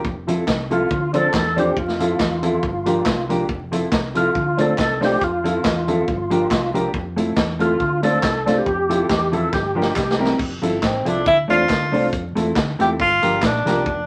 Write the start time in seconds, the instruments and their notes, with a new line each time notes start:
0.05 fingered electric bass F1, kick
0.27 clean electric guitar F3 C4 E4 A4, upright piano E4 F4 A4, closed hi-hat
0.47 fingered electric bass C2, kick, snare, clap
0.70 clean electric guitar F3 C4 E4 A4, upright piano E4 F4 A4, tonewheel organ F4, closed hi-hat
0.90 fingered electric bass D2, kick
1.13 clean electric guitar F3 C4 D4 A4, upright piano D4 F4 C5, tonewheel organ A4, closed hi-hat
1.33 fingered electric bass E2, tonewheel organ A4, kick, snare, clap
1.56 clean electric guitar F3 C4 D4 A4, upright piano D4 F4 C5, tonewheel organ G4, closed hi-hat
1.76 fingered electric bass F2, tonewheel organ F4, kick
1.88 snare
1.99 clean electric guitar F3 C4 E4 A4, upright piano E4 F4 A4, closed hi-hat
2.19 fingered electric bass E2, kick, snare, clap
2.42 clean electric guitar F3 C4 E4 A4, upright piano E4 F4 A4, closed hi-hat
2.63 fingered electric bass G1, kick
2.85 clean electric guitar F3 A#3 D4 G4, upright piano F4 G4 A#4, closed hi-hat
3.05 fingered electric bass C2, kick, snare, clap
3.29 clean electric guitar F3 A#3 D4 G4, upright piano F4 G4 A#4, closed hi-hat
3.49 fingered electric bass F1, kick
3.71 clean electric guitar F3 C4 E4 A4, upright piano E4 F4 A4, closed hi-hat
3.92 fingered electric bass C2, kick, snare, clap
4.14 clean electric guitar F3 C4 E4 A4, upright piano E4 F4 A4, tonewheel organ F4, closed hi-hat
4.35 fingered electric bass D2, kick
4.57 clean electric guitar A3 C4 F4 A4, upright piano D4 F4 C5, tonewheel organ A4, closed hi-hat
4.78 fingered electric bass C2, upright piano F4 C5, tonewheel organ A4, kick, snare, clap
5.01 clean electric guitar A3 C4 F4 A4, upright piano D4 F4 C5, snare, open hi-hat
5.05 tonewheel organ G4
5.21 fingered electric bass F2, tonewheel organ F4, kick, hi-hat pedal
5.44 clean electric guitar F3 C4 E4 A4, upright piano E4 F4 A4, closed hi-hat
5.64 fingered electric bass E2, kick, snare, clap
5.87 clean electric guitar F3 C4 E4 A4, upright piano E4 F4 A4, closed hi-hat
6.08 fingered electric bass G1, kick
6.30 clean electric guitar F3 A#3 D4 G4, upright piano F4 G4 A#4, closed hi-hat
6.51 fingered electric bass C2, kick, snare, clap
6.73 clean electric guitar F3 A#3 D4 G4, upright piano F4 G4 A#4, closed hi-hat
6.94 fingered electric bass F2, kick
7.16 clean electric guitar A3 C4 E4 A4, upright piano E4 F4 A4, closed hi-hat
7.37 fingered electric bass E2, kick, snare, clap
7.59 clean electric guitar A3 C4 E4 A4, upright piano E4 F4 A4, tonewheel organ F4, closed hi-hat
7.80 fingered electric bass D2, kick
8.03 clean electric guitar A3 C4 F4 A4, upright piano D4 F4 C5, tonewheel organ A4, closed hi-hat
8.23 fingered electric bass C2, upright piano F4 C5, tonewheel organ A4, kick, snare, clap
8.46 clean electric guitar A3 C4 F4 A4, upright piano D4 F4 C5, snare, closed hi-hat
8.58 tonewheel organ G4
8.66 fingered electric bass F2, kick
8.89 clean electric guitar F3 C4 E4 A4, upright piano E4 F4 A4, closed hi-hat
9.09 fingered electric bass E2, kick, snare, clap
9.32 clean electric guitar F3 C4 E4 A4, upright piano E4 F4 A4, tonewheel organ A4, closed hi-hat
9.53 fingered electric bass G1, tonewheel organ G4, kick, snare
9.75 clean electric guitar F3 A#3 D4 G4, upright piano F4 G4 A#4
9.82 snare
9.96 fingered electric bass C2, kick, snare, clap
10.11 snare
10.19 clean electric guitar G3 A#3 E4 G4, upright piano C4 E4 A#4
10.25 snare
10.39 fingered electric bass F1, kick, crash
10.62 fingered electric bass G1, clean electric guitar F3 C4 E4 A4, upright piano E4 F4 A4, closed hi-hat
10.82 fingered electric bass A1, tenor saxophone C4, kick, snare, clap
11.05 fingered electric bass C2, clean electric guitar F3 C4 E4 A4, tenor saxophone D4, upright piano E4 F4 A4, closed hi-hat
11.26 fingered electric bass D2, tenor saxophone E4, kick
11.48 fingered electric bass E2, clean electric guitar A3 C4 F4 A4, upright piano D4 F4 C5, tenor saxophone F4, closed hi-hat
11.69 fingered electric bass D2, kick, snare, clap
11.92 fingered electric bass C2, clean electric guitar A3 C4 F4 A4, upright piano D4 F4 C5, open hi-hat
12.12 fingered electric bass F2, kick, hi-hat pedal
12.35 fingered electric bass E2, clean electric guitar A3 C4 E4 A4, upright piano E4 F4 A4, closed hi-hat
12.56 fingered electric bass D2, kick, snare, clap
12.79 fingered electric bass E2, clean electric guitar A3 C4 E4 A4, upright piano E4 F4 A4, tenor saxophone G4, closed hi-hat
12.99 fingered electric bass G1, tenor saxophone F4, kick
13.22 fingered electric bass G1, clean electric guitar F3 A#3 D4 G4, upright piano F4 G4 A#4, closed hi-hat
13.42 fingered electric bass A#1, tenor saxophone D4, kick, snare, clap
13.65 fingered electric bass C2, clean electric guitar F3 A#3 D4 G4, upright piano F4 G4 A#4, snare, closed hi-hat
13.86 fingered electric bass F1, kick